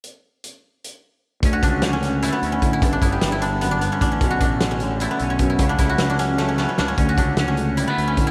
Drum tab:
HH |x-x-x--|xxxxxxx|xxxxxxx|xxxxxxx|
SD |-------|--ooo--|--o----|--o----|
BD |-------|oo----o|oo----o|oo----o|

HH |xxxx---|xxxxxxx|
SD |-oooooo|--o----|
BD |oo-----|oo----o|